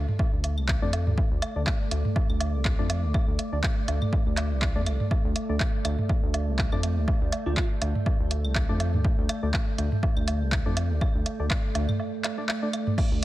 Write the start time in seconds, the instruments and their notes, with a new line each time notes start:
Already playing: ambient pad A3 A4 D5 D6
0.08 mid tom
0.19 kick, low woodblock
0.33 analog synth bass D2
0.44 closed hi-hat, low woodblock
0.57 analog synth bass C2, claves
0.68 kick, clap, low woodblock
0.82 analog synth bass F2, synth stab A3 D4 D5
0.93 closed hi-hat, low woodblock
1.07 analog synth bass D2, mid tom
1.18 kick, low woodblock
1.31 analog synth bass D2
1.42 closed hi-hat, claves, low woodblock
1.56 analog synth bass D2, synth stab A3 D4 D5
1.67 kick, clap, low woodblock
1.91 analog synth bass D2, closed hi-hat, low woodblock
2.05 mid tom
2.16 kick, low woodblock
2.30 analog synth bass D2, claves
2.40 closed hi-hat, low woodblock
2.54 analog synth bass C2
2.65 kick, clap, low woodblock
2.79 analog synth bass F2, synth stab A3 D4 D5
2.90 closed hi-hat, low woodblock
3.03 analog synth bass D2
3.14 kick, claves, low woodblock
3.28 analog synth bass D2
3.39 closed hi-hat, low woodblock
3.52 analog synth bass D2, synth stab A3 D4 D5
3.63 kick, clap, low woodblock
3.88 analog synth bass D2, closed hi-hat, low woodblock
4.02 mid tom, claves
4.13 kick, low woodblock
4.26 analog synth bass D2
4.37 clap, closed hi-hat, low woodblock
4.51 analog synth bass C2
4.62 kick, clap, low woodblock
4.75 analog synth bass F2, synth stab A3 D4 D5
4.86 analog synth bass C2, closed hi-hat, claves, low woodblock
5.00 mid tom
5.11 kick, low woodblock
5.25 analog synth bass D2
5.36 closed hi-hat, low woodblock
5.49 analog synth bass D2, synth stab A3 D4 D5, ambient pad G6
5.60 kick, clap, low woodblock
5.85 analog synth bass D2, closed hi-hat, claves, low woodblock
5.98 mid tom
6.09 kick, low woodblock
6.23 analog synth bass D2
6.34 closed hi-hat, low woodblock
6.48 analog synth bass C2
6.59 kick, clap, low woodblock
6.72 analog synth bass F2, synth stab A3 D4 D5, claves
6.83 closed hi-hat, low woodblock
6.97 analog synth bass D2
7.08 kick, low woodblock
7.22 analog synth bass D2
7.32 closed hi-hat, low woodblock
7.46 analog synth bass D2, synth stab A3 D4 D5, fm electric piano F4
7.57 kick, clap, claves, low woodblock
7.82 analog synth bass D2, closed hi-hat, low woodblock
7.95 mid tom
8.06 kick, low woodblock
8.20 analog synth bass D2
8.31 closed hi-hat, low woodblock
8.45 analog synth bass C2, claves
8.55 kick, clap, low woodblock
8.69 analog synth bass F2, synth stab A3 D4 D5
8.80 closed hi-hat, low woodblock
8.94 analog synth bass D2, mid tom
9.04 kick, low woodblock
9.18 analog synth bass D2
9.29 closed hi-hat, claves, low woodblock
9.43 analog synth bass D2, synth stab A3 D4 D5
9.54 kick, clap, low woodblock
9.78 analog synth bass D2, closed hi-hat, low woodblock
9.92 mid tom
10.03 kick, low woodblock
10.17 analog synth bass D2, claves
10.28 closed hi-hat, low woodblock
10.41 analog synth bass C2
10.52 kick, clap, low woodblock
10.66 analog synth bass F2, synth stab A3 D4 D5
10.77 closed hi-hat, low woodblock
10.90 analog synth bass D2
11.01 kick, claves, low woodblock
11.15 analog synth bass D2
11.26 closed hi-hat, low woodblock
11.40 analog synth bass D2, synth stab A3 D4 D5
11.50 kick, clap, low woodblock
11.75 analog synth bass D2, closed hi-hat, low woodblock
11.89 mid tom, claves
12.00 low woodblock
12.24 clap, closed hi-hat, low woodblock
12.38 synth stab A3 D4 D5
12.49 clap, low woodblock
12.62 synth stab A3 D4 D5
12.73 closed hi-hat, claves, low woodblock
12.87 mid tom
12.98 kick, crash, low woodblock
13.12 analog synth bass D2